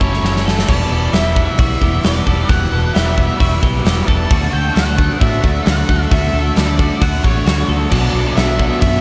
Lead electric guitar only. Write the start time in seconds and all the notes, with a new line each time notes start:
Already playing: E5
0.01 C#5
0.69 D5
1.13 E5
1.60 E5
2.04 D5
2.49 F#5
2.94 E5
4.07 A5
4.53 G5
4.75 F#5
5.20 E5
5.66 F#5
6.11 E5
6.57 D5
7.02 F#5
7.23 C#5
7.90 D5
8.36 E5
8.80 E5